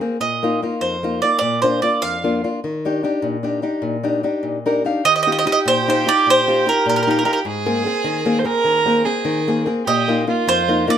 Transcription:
0.01 nylon-string guitar A#3 C4 G#4
0.20 nylon-string guitar A#2, mandolin D#5
0.43 nylon-string guitar A#3 D#4 F4
0.62 nylon-string guitar A#3 D#4 F4
0.81 nylon-string guitar F2, mandolin C5
1.03 nylon-string guitar A#3 D#4 F4
1.22 nylon-string guitar A#3 D#4 F4, mandolin D5
1.39 nylon-string guitar A#2, mandolin D5
1.62 nylon-string guitar A#3 D4 F4, mandolin C5
1.82 nylon-string guitar A#3 D4 F4, mandolin D5
2.02 nylon-string guitar F2, mandolin F5
2.24 nylon-string guitar A#3 D4 F4
2.44 nylon-string guitar A#3 D4 F4
2.64 nylon-string guitar D#3
2.85 nylon-string guitar D4 D#4 G4
3.03 nylon-string guitar D4 D#4 G4
3.22 nylon-string guitar A#2
3.43 nylon-string guitar D4 D#4 G4
3.62 nylon-string guitar D4 D#4 G4
3.82 nylon-string guitar A#2
4.03 nylon-string guitar D4 D#4 G4
4.23 nylon-string guitar D4 D#4 G4
4.43 nylon-string guitar A#2
4.66 nylon-string guitar D4 D#4 G4 A#4
4.84 nylon-string guitar D4 D#4 G4 F5
5.05 nylon-string guitar D#3, violin G4, mandolin D#5
5.16 mandolin D#5
5.23 mandolin D#5
5.27 nylon-string guitar D#4 F4 G4
5.32 mandolin D#5
5.39 mandolin D#5
5.45 nylon-string guitar D#4 F4 G4, mandolin D#5
5.52 mandolin D#5
5.66 nylon-string guitar A#2, mandolin C5
5.88 nylon-string guitar D#4 F4 G4, mandolin C5
6.06 nylon-string guitar D#4 F4 G4, mandolin D5
6.26 nylon-string guitar A#2, mandolin C5
6.47 nylon-string guitar D#4 F4 G4
6.66 nylon-string guitar D#4 F4 G4, mandolin A#4
6.86 nylon-string guitar A#2, mandolin A#4
6.96 mandolin A#4
7.03 mandolin A#4
7.07 nylon-string guitar D#4 F4 G4, mandolin A#4
7.19 mandolin A#4
7.25 nylon-string guitar D#4 F4 G4, mandolin A#4
7.33 mandolin A#4
7.45 nylon-string guitar G#2, violin G#4
7.66 nylon-string guitar A#3 C4 G#4
7.86 nylon-string guitar A#3 C4 G#4
8.04 nylon-string guitar D#3
8.25 nylon-string guitar A#3 C4 G#4
8.39 violin C5
8.44 nylon-string guitar A#3 C4 G#4, violin A#4
8.64 nylon-string guitar D#3
8.85 nylon-string guitar A#3 C4 G#4
9.05 nylon-string guitar A#3 C4 G#4, violin G#4
9.25 nylon-string guitar D#3
9.48 nylon-string guitar A#3 C4 G#4
9.66 nylon-string guitar A#3 C4 G#4
9.86 nylon-string guitar A#2, violin G4, mandolin D#5
10.08 nylon-string guitar A#3 D#4 F4
10.27 nylon-string guitar A#3 D#4 F4, violin F4
10.47 nylon-string guitar F2, mandolin C5
10.68 nylon-string guitar A#3 D#4 F4
10.87 nylon-string guitar A#3 D#4 F4, mandolin D5

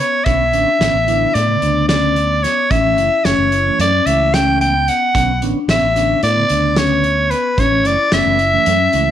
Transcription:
0.00 vibraphone B3, soprano saxophone C#5
0.25 fingered electric bass B1, tonewheel organ D3 B3 C#4, vibraphone B3, soprano saxophone E5, kick, closed hi-hat
0.52 fingered electric bass A1, tonewheel organ D3 B3 C#4, vibraphone D4, closed hi-hat
0.79 fingered electric bass A1, tonewheel organ D3 B3 C#4, vibraphone B3, snare, closed hi-hat
0.94 fingered electric bass A1
1.06 tonewheel organ D3 B3 E4, vibraphone D4, closed hi-hat
1.34 fingered electric bass A2, vibraphone B3, soprano saxophone D5, closed hi-hat
1.48 tonewheel organ C#3 D3 B3
1.62 fingered electric bass D2, vibraphone D4, closed hi-hat
1.88 vibraphone C#4, soprano saxophone D5, snare, closed hi-hat
2.16 vibraphone B3, closed hi-hat
2.43 vibraphone B3, soprano saxophone C#5, snare, closed hi-hat
2.70 fingered electric bass A1, tonewheel organ E3 A3 C#4, vibraphone C#4, soprano saxophone E5, kick, closed hi-hat
2.84 tonewheel organ E3 A3 C#4
2.98 fingered electric bass F#1, vibraphone E4, closed hi-hat
3.24 fingered electric bass F#1, tonewheel organ E3 A3 C#4, vibraphone C#4, soprano saxophone C#5, snare, closed hi-hat
3.38 fingered electric bass F#1
3.52 vibraphone E4, closed hi-hat
3.66 tonewheel organ E3 A3 C#4
3.79 fingered electric bass F#2, vibraphone C#4, soprano saxophone D5, closed hi-hat
4.06 fingered electric bass C#2, tonewheel organ E3 A3 C#4, vibraphone E4, soprano saxophone E5, closed hi-hat
4.34 vibraphone C#4, soprano saxophone G5, snare, closed hi-hat
4.61 vibraphone B3, soprano saxophone G5, closed hi-hat
4.88 vibraphone B3, soprano saxophone F#5, closed hi-hat
5.15 fingered electric bass B1, tonewheel organ D3 B3 C#4, vibraphone B3, kick, closed hi-hat
5.42 fingered electric bass A1, tonewheel organ D3 B3 C#4, vibraphone D4, closed hi-hat
5.68 fingered electric bass A1, tonewheel organ D3 B3 C#4, vibraphone B3, soprano saxophone E5, snare, closed hi-hat
5.82 fingered electric bass A1
5.95 tonewheel organ D3 B3 C#4, vibraphone D4, snare, closed hi-hat
6.23 fingered electric bass A2, vibraphone B3, soprano saxophone D5, closed hi-hat
6.35 tonewheel organ C#3 D3 B3
6.49 fingered electric bass D2, vibraphone D4, closed hi-hat
6.76 vibraphone C#4, soprano saxophone C#5, snare, closed hi-hat
7.03 vibraphone B3, closed hi-hat
7.30 vibraphone B3, soprano saxophone B4, closed hi-hat
7.57 fingered electric bass A1, tonewheel organ E3 A3 C#4, vibraphone C#4, soprano saxophone C#5, kick, closed hi-hat
7.72 tonewheel organ E3 A3 C#4
7.83 fingered electric bass F#1, vibraphone E4, soprano saxophone D5, closed hi-hat
8.11 fingered electric bass F#1, tonewheel organ E3 A3 B3, vibraphone C#4, soprano saxophone E5, snare, closed hi-hat
8.26 fingered electric bass F#1
8.38 vibraphone E4, closed hi-hat
8.52 tonewheel organ E3 A3 C#4
8.65 fingered electric bass F#2, vibraphone C#4, closed hi-hat
8.92 fingered electric bass C#2, tonewheel organ E3 A3 C#4, vibraphone E4, closed hi-hat

